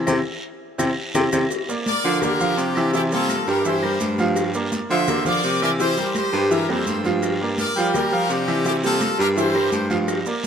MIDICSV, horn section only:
0, 0, Header, 1, 2, 480
1, 0, Start_track
1, 0, Tempo, 357356
1, 101, Time_signature, 4, 2, 24, 8
1, 14061, End_track
2, 0, Start_track
2, 0, Title_t, "Horn section"
2, 0, Program_c, 0, 61
2, 2522, Note_on_c, 0, 74, 105
2, 2528, Note_on_c, 0, 70, 88
2, 2961, Note_off_c, 0, 74, 0
2, 2965, Note_off_c, 0, 70, 0
2, 2986, Note_on_c, 0, 70, 102
2, 2990, Note_on_c, 0, 67, 80
2, 3456, Note_off_c, 0, 67, 0
2, 3466, Note_off_c, 0, 70, 0
2, 3472, Note_on_c, 0, 67, 90
2, 3484, Note_on_c, 0, 62, 73
2, 3944, Note_off_c, 0, 67, 0
2, 3955, Note_off_c, 0, 62, 0
2, 3960, Note_on_c, 0, 67, 89
2, 3966, Note_on_c, 0, 64, 78
2, 4065, Note_off_c, 0, 67, 0
2, 4070, Note_off_c, 0, 64, 0
2, 4215, Note_on_c, 0, 69, 101
2, 4218, Note_on_c, 0, 65, 75
2, 4649, Note_off_c, 0, 69, 0
2, 4650, Note_off_c, 0, 65, 0
2, 4678, Note_on_c, 0, 70, 88
2, 4682, Note_on_c, 0, 67, 80
2, 4912, Note_off_c, 0, 70, 0
2, 4914, Note_off_c, 0, 67, 0
2, 4929, Note_on_c, 0, 72, 90
2, 4931, Note_on_c, 0, 67, 73
2, 5588, Note_off_c, 0, 72, 0
2, 5589, Note_off_c, 0, 67, 0
2, 6593, Note_on_c, 0, 76, 106
2, 6594, Note_on_c, 0, 72, 91
2, 7036, Note_off_c, 0, 76, 0
2, 7037, Note_off_c, 0, 72, 0
2, 7083, Note_on_c, 0, 74, 106
2, 7091, Note_on_c, 0, 70, 88
2, 7554, Note_off_c, 0, 74, 0
2, 7558, Note_off_c, 0, 70, 0
2, 7572, Note_on_c, 0, 74, 96
2, 7580, Note_on_c, 0, 70, 75
2, 7674, Note_off_c, 0, 74, 0
2, 7680, Note_off_c, 0, 70, 0
2, 7807, Note_on_c, 0, 72, 103
2, 7808, Note_on_c, 0, 67, 74
2, 8243, Note_off_c, 0, 72, 0
2, 8244, Note_off_c, 0, 67, 0
2, 8295, Note_on_c, 0, 72, 95
2, 8304, Note_on_c, 0, 67, 76
2, 8728, Note_off_c, 0, 72, 0
2, 8732, Note_off_c, 0, 67, 0
2, 8751, Note_on_c, 0, 70, 89
2, 8760, Note_on_c, 0, 67, 70
2, 8988, Note_off_c, 0, 70, 0
2, 8992, Note_off_c, 0, 67, 0
2, 9011, Note_on_c, 0, 72, 89
2, 9019, Note_on_c, 0, 69, 72
2, 9478, Note_off_c, 0, 72, 0
2, 9482, Note_off_c, 0, 69, 0
2, 10216, Note_on_c, 0, 70, 85
2, 10218, Note_on_c, 0, 74, 105
2, 10647, Note_off_c, 0, 70, 0
2, 10648, Note_off_c, 0, 74, 0
2, 10699, Note_on_c, 0, 67, 82
2, 10711, Note_on_c, 0, 70, 99
2, 11161, Note_off_c, 0, 67, 0
2, 11167, Note_off_c, 0, 70, 0
2, 11171, Note_on_c, 0, 62, 73
2, 11184, Note_on_c, 0, 67, 95
2, 11637, Note_off_c, 0, 62, 0
2, 11643, Note_off_c, 0, 67, 0
2, 11643, Note_on_c, 0, 64, 72
2, 11659, Note_on_c, 0, 67, 89
2, 11747, Note_off_c, 0, 64, 0
2, 11758, Note_off_c, 0, 67, 0
2, 11885, Note_on_c, 0, 65, 77
2, 11907, Note_on_c, 0, 69, 98
2, 12320, Note_off_c, 0, 65, 0
2, 12332, Note_off_c, 0, 69, 0
2, 12362, Note_on_c, 0, 67, 64
2, 12379, Note_on_c, 0, 70, 88
2, 12465, Note_off_c, 0, 67, 0
2, 12479, Note_off_c, 0, 70, 0
2, 12598, Note_on_c, 0, 67, 69
2, 12611, Note_on_c, 0, 72, 92
2, 13259, Note_off_c, 0, 67, 0
2, 13266, Note_off_c, 0, 72, 0
2, 14061, End_track
0, 0, End_of_file